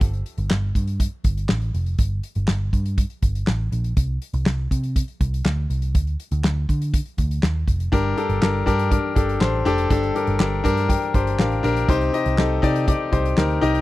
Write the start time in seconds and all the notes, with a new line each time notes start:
0.01 G1, kick, closed hi-hat
0.13 closed hi-hat
0.26 closed hi-hat
0.38 G1, closed hi-hat
0.51 G1, snare, clap
0.75 G2, kick, closed hi-hat
0.87 closed hi-hat
1.00 kick, closed hi-hat
1.24 G1, kick, closed hi-hat
1.37 closed hi-hat
1.49 A1, snare, clap
1.61 closed hi-hat
1.74 F1, closed hi-hat
1.86 closed hi-hat
1.98 G1, kick, closed hi-hat
2.23 closed hi-hat
2.35 G1, closed hi-hat
2.48 G1, snare, clap
2.73 G2, kick, closed hi-hat
2.86 closed hi-hat
2.98 kick, closed hi-hat
3.10 closed hi-hat
3.22 G1, kick, closed hi-hat
3.35 closed hi-hat
3.47 A1, snare, clap
3.72 A#1, closed hi-hat
3.84 closed hi-hat
3.97 C2, kick, closed hi-hat
4.22 closed hi-hat
4.33 C2, closed hi-hat
4.46 C2, snare, clap
4.71 C3, kick, closed hi-hat
4.83 closed hi-hat
4.96 kick, closed hi-hat
5.08 closed hi-hat
5.21 C2, kick, closed hi-hat
5.34 closed hi-hat
5.45 D2, snare, clap
5.70 C2, closed hi-hat
5.82 closed hi-hat
5.95 D2, kick, closed hi-hat
6.07 closed hi-hat
6.20 closed hi-hat
6.31 D2, closed hi-hat
6.44 D2, snare, clap
6.69 D3, kick, closed hi-hat
6.82 closed hi-hat
6.94 kick, closed hi-hat
7.06 closed hi-hat
7.18 D2, kick, closed hi-hat
7.31 closed hi-hat
7.43 D#2, snare, clap
7.67 F1, kick, closed hi-hat
7.80 closed hi-hat
7.92 G1 G2 D4 G4 A#4, kick, closed hi-hat
8.17 D4 G4 A4, closed hi-hat
8.29 G1, closed hi-hat
8.42 G1 D4 G4 A#4, snare, clap
8.66 G2 D4 G4 A#4, kick, closed hi-hat
8.79 closed hi-hat
8.91 D4 G4 A#4, kick, closed hi-hat
9.15 G1 D4 G4 A4, kick, closed hi-hat
9.29 closed hi-hat
9.40 A1 D4 G4 C5, snare, clap
9.65 F1 D4 G4 A4, closed hi-hat
9.78 closed hi-hat
9.90 G1 G2 D4 G4 A4, kick, closed hi-hat
10.03 closed hi-hat
10.14 D4 G4 A#4, closed hi-hat
10.27 G1, closed hi-hat
10.39 G1 D4 G4 A#4, snare, clap
10.64 G2 D4 G4 A#4 A#5, kick, closed hi-hat
10.77 snare, closed hi-hat
10.88 D4 G4 A#4 G5, kick, closed hi-hat
11.02 closed hi-hat
11.14 G1 D4 G4 C5, kick, closed hi-hat
11.27 closed hi-hat
11.38 A1 D4 G4 A#4 F5, snare, clap
11.52 closed hi-hat
11.63 A#1 D4 G4 A#4, closed hi-hat
11.76 closed hi-hat
11.88 C2 C3 D#4 G4 C5, kick, closed hi-hat
12.01 closed hi-hat
12.13 D#4 G4 D#5, closed hi-hat
12.25 C2, closed hi-hat
12.37 C2 D#4 G4 A4, snare, clap
12.62 C3 D#4 G4 D5, kick, closed hi-hat
12.76 closed hi-hat
12.87 D#4 G4 D5, kick, closed hi-hat
13.11 C2 D#4 G4 C5, kick, closed hi-hat
13.25 closed hi-hat
13.37 D2 D#4 G4 A#4, snare, clap
13.50 closed hi-hat
13.61 C2 D#4 G4 D#5, closed hi-hat
13.75 closed hi-hat